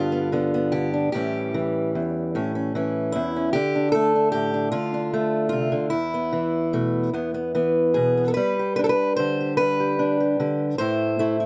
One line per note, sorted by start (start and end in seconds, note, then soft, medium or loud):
0.00 1.08 G2 medium
0.00 0.31 D3 medium
0.00 0.11 B3 soft
0.00 0.93 F4 medium
0.00 0.71 G4 medium
0.12 0.32 B3 soft
0.32 0.71 D3 medium
0.32 0.53 B3 soft
0.54 1.09 B3 soft
0.72 1.08 D3 medium
0.72 1.11 G4 medium
0.93 1.09 D4 soft
1.12 1.95 A2 medium
1.12 1.53 E3 soft
1.12 3.55 G3 medium
1.12 2.34 C#4 soft
1.12 3.12 G4 medium
1.54 2.74 E3 medium
1.95 2.35 E2 medium
2.35 3.15 A2 medium
2.35 2.54 C#4 medium
2.55 2.75 C#4 soft
2.75 3.50 E3 medium
2.75 3.35 C#4 medium
3.12 3.55 E2 medium
3.12 3.52 E4 medium
3.36 3.50 C#4 soft
3.53 4.71 D3 medium
3.53 3.91 G4 loud
3.75 4.14 D4 soft
3.92 5.13 A3 medium
3.92 4.31 A4 loud
4.16 4.53 D4 soft
4.32 4.73 A2 medium
4.32 4.71 G4 loud
4.54 4.93 D4 soft
4.72 5.71 D3 medium
4.72 5.48 F4 medium
4.94 5.88 D4 soft
5.14 5.88 A3 medium
5.49 5.72 C3 medium
5.49 5.89 F4 medium
5.72 5.92 D3 medium
5.90 7.12 E2 medium
5.90 7.94 E4 medium
6.14 7.13 B3 soft
6.33 7.09 E3 medium
6.73 7.09 B2 medium
6.73 7.09 A3 soft
7.13 8.37 E2 medium
7.13 7.33 B3 soft
7.34 7.54 B3 soft
7.55 8.32 E3 medium
7.55 8.16 B3 soft
7.94 8.32 B2 medium
7.94 8.27 G#4 medium
8.17 8.32 B3 soft
8.28 8.33 A4 medium
8.34 9.59 G3 medium
8.34 8.75 B4 loud
8.59 9.39 G4 soft
8.76 9.98 D4 medium
8.76 8.83 B4 loud
8.84 8.89 A4 medium
8.89 9.16 B4 loud
9.16 10.38 D3 medium
9.16 9.57 C5 loud
9.41 9.79 G4 soft
9.57 10.75 G3 medium
9.57 10.78 B4 loud
9.80 10.19 G4 soft
9.99 10.74 D4 medium
10.20 10.39 G4 soft
10.40 10.75 D3 medium
10.40 10.75 G4 soft
10.78 11.46 A2 medium
10.78 11.19 A3 soft
10.78 11.19 E4 soft
10.78 11.46 C5 loud
11.19 11.46 A3 medium
11.19 11.39 E4 medium
11.40 11.46 E4 soft